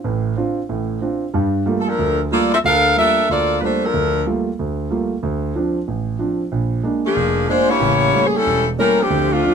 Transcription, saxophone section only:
1.80 A4
1.89 F3 D4 A4 A#4
2.33 A#3 F4 A4 D5
2.53 C4 F4 A4 E5
2.65 D4 A4 A#4 F5
2.98 D4 A4 A#4 E5
3.31 A#3 F4 A4 D5
3.60 A3 D4 F4 B4 C5
3.84 F3 D4 A4 A#4
7.06 F3 A#3 D4 G#4
7.50 G#3 D4 F4 C5
7.70 A#3 E4 G4 C#5
8.27 G#4
8.37 G3 C#4 E4 A4
8.80 G3 C#4 E4 A#4
9.00 F3 C4 D4 G4
9.32 A3 C4 D4 F4

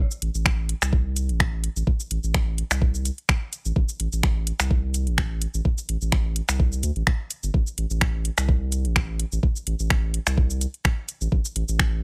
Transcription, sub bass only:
0.22 A1
0.34 A1
0.82 C2
1.29 A1
1.76 A1
2.11 A1
2.23 A1
2.71 C2
3.65 A1
3.76 A1
4.00 A1
4.13 A1
4.60 C2
5.07 A1
5.54 A1
5.89 A1
6.02 A1
6.49 C2
6.83 D2
6.96 A1
7.43 G1
7.54 A1
7.78 A1
7.90 A1
8.38 C2
8.85 A1
9.32 A1
9.67 A1
9.80 A1
10.27 C2
11.21 A1
11.32 A1
11.56 A1
11.68 A1

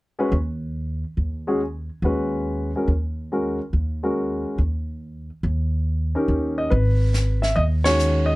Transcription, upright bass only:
0.32 D#2
1.17 D#2
2.02 D#2
2.88 D#2
3.73 D#2
4.58 D#2
5.43 D#2
6.28 D#2
6.71 G#1
7.56 D#2

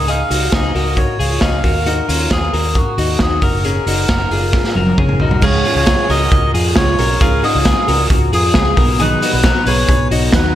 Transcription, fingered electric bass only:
Already playing: C#2
0.30 C#2
0.52 C#2
0.75 C#2
1.20 C#2
1.42 C#2
1.64 D#2
2.09 D#2
2.31 D#2
2.53 D#2
2.98 D#2
3.20 D#2
3.42 F#1
3.86 F#1
4.09 F#1
4.31 F#1
4.76 F#1
4.98 F#1
5.20 B1
5.42 C#2
5.75 C#2
6.09 C#2
6.32 C#2
6.54 F2
6.77 C#2
6.99 B1
7.21 C#2
7.55 C#2
7.88 C#2
8.10 C#2
8.33 F2
8.55 C#2
8.77 B1
9.33 B1
9.66 B1
9.88 B1
10.11 B1
10.33 D#2

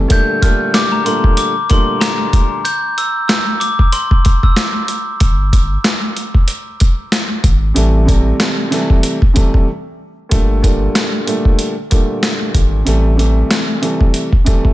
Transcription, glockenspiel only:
0.12 G6
0.42 F6
0.75 D6
0.92 A#5
1.06 C6
1.38 D6
1.71 C6
2.01 A#5
2.65 G6
2.98 E6
3.28 E6
3.60 D6
3.93 C6
4.44 E6

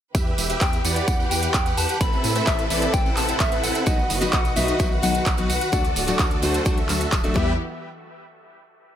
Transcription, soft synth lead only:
0.62 G5
0.85 F#5
1.31 G5
1.77 A5
2.01 B5
2.47 E5
2.70 E5
2.93 G5
3.17 A5
3.41 E5
3.64 F#5
4.33 F#5
4.57 E5
5.03 F#5
5.50 F#5
7.36 E5

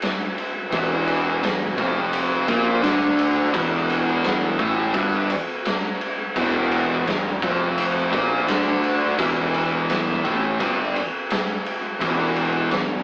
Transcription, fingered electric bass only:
0.73 E1
1.44 E1
1.78 F1
2.48 A#1
2.84 D2
3.54 E1
4.59 A1
4.94 G1
6.36 E1
7.06 E1
7.42 F1
8.13 A#1
8.49 D2
9.19 E1
10.25 A1
10.60 G1
12.01 E1
12.72 E1

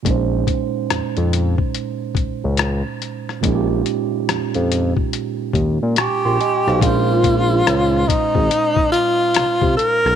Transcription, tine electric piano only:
0.03 A#2 G#3 C#4
0.09 D#4 C5
3.41 A#2 G#3 C#4
3.46 D#4 F4
3.55 G4
5.99 G#5 C#6
6.25 G5 C6
6.40 D#5 G#5
6.68 C5 F5
6.80 A#2 G#3 C#4
6.85 D#4 C5

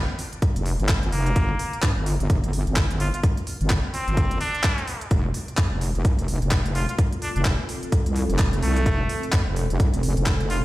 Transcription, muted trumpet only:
1.12 A#3
3.00 F4
3.14 F4
3.94 C4
4.41 D4
6.75 F4
6.89 F4
7.22 D4
7.36 D4
8.62 A3
10.50 F4

